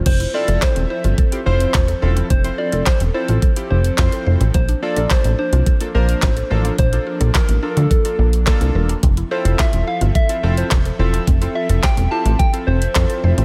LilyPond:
<<
  \new Staff \with { instrumentName = "Soft synth lead" } { \time 4/4 \key f \major \tempo 4 = 107 c''8 d''8 c''8 c''4 c''4. | c''8 d''8 c''8 c''4 c''4. | c''8 d''8 c''8 c''4 c''4. | c''4 bes'8~ bes'32 bes'32 a'4~ a'16 r4 |
r8 c''8 e''8 f''8 e''8. c''8. r8 | r8 e''8 g''8 a''8 g''8 c''4. | }
  \new Staff \with { instrumentName = "Synth pluck" } { \time 4/4 \key f \major c'16 e'16 f'16 a'16 c''16 c'16 e'16 f'16 a'16 r16 c'16 r16 f'16 a'16 c''16 c'16 | c'16 e'16 f'16 a'16 c''16 c'16 e'16 f'16 a'16 r16 c'16 r16 f'16 a'16 c''16 c'16 | bes16 d'16 f'16 a'16 r16 bes16 d'16 f'16 a'16 r16 bes16 r16 f'16 a'16 bes'16 bes16 | bes16 d'16 f'16 a'16 bes'16 bes16 d'16 f'16 a'16 r16 bes16 r16 f'16 a'16 bes'16 bes16 |
c'16 e'16 f'16 a'16 c''16 c'16 e'16 f'16 a'16 r16 c'16 r16 f'16 a'16 c''16 c'16 | c'16 e'16 f'16 a'16 c''16 c'16 e'16 f'16 a'16 r16 c'16 r16 f'16 a'16 c''16 c'16 | }
  \new Staff \with { instrumentName = "Synth keys" } { \time 4/4 \key f \major r8 <c' e' f' a'>4 r8. <c' e' f' g'>16 <c' e' f' c''>8 r8 <c' e' f' a'>8 | r16 <c' e' f' c''>8. r8 <c' e' f' a'>8 r16 <c' e' f' g'>8 r16 <c' e' f' c''>8. r16 | r8 <bes d' f' a'>4 r8. <bes d' f' a'>16 <bes d' f' bes'>8 r8 <bes d' f' a'>8 | r16 <bes d' f' a'>8. r8 <bes d' f' a'>8 r16 <bes d' f' a'>8 r16 <bes d' f' a'>8. r16 |
r8 <c' e' f' a'>4 r8. <c' e' f' a'>16 <c' e' f' a'>8 r8 <c' e' f' a'>8 | r16 <c' e' f' a'>8. r8 <c' e' f' g'>8 r16 <c' e' f' a'>8 r16 <c' e' f' a'>8. r16 | }
  \new Staff \with { instrumentName = "Analog synth pad" } { \time 4/4 \key f \major << { e''1 | r1 | bes1~ | bes1 |
e''1~ | e''1 | } \\ { <f c' a'>1~ | <f c' a'>1 | <f d'>1~ | <f d'>1 |
<f c' a'>1~ | <f c' a'>1 | } >> }
  \new Staff \with { instrumentName = "Analog synth bass" } { \clef bass \time 4/4 \key f \major f,,8 r16 f,,16 r16 e,,16 r16 g,,16 r8 f,,8 e,,8 e,,8 | f,,8 r16 f,,16 r16 e,,16 r16 a,,16 r8 f,,8 f,16 r16 f,,16 a,,16 | bes,,8 r16 bes,,16 r16 a,,16 r16 c,16 r8 bes,,8 a,,8 a,,8 | bes,,8 r16 bes,,16 r16 a,,16 r16 d,16 r8 bes,,8. c,16 e,,8 |
f,,8 r16 f,,16 r16 e,,16 r16 g,,16 r8 f,,8 e,,8 e,,8 | f,,8 r16 f,,16 r16 e,,16 r16 a,,16 r8 f,,8 f,16 r16 f,,16 a,,16 | }
  \new DrumStaff \with { instrumentName = "Drums" } \drummode { \time 4/4 <cymc hh bd>16 hh8 hh16 <hc hh bd sn>16 hh8 hh16 <hh bd>16 hh8 hh16 <hc hh bd sn>16 hh8 hh16 | <hh bd>16 hh8 hh16 <hc hh bd sn>16 hh8 hh16 <hh bd>16 hh8 hh16 <hc hh bd sn>16 hh8 hh16 | <hh bd>16 hh8 hh16 <hc hh bd sn>16 hh8 hh16 <hh bd>16 hh8 hh16 <hc hh bd sn>16 hh8 hh16 | <hh bd>16 hh8 hh16 <hc hh bd sn>16 hh8 hh16 <hh bd>16 hh8 hh16 <hc hh bd sn>16 hh8 hh16 |
<hh bd>16 hh8 hh16 <hc hh bd sn>16 hh8 hh16 <hh bd>16 hh8 hh16 <hc hh bd sn>16 hh8 hh16 | <hh bd>16 hh8 hh16 <hc hh bd sn>16 hh8 hh16 <hh bd>16 hh8 hh16 <hc hh bd sn>16 hh8 hh16 | }
>>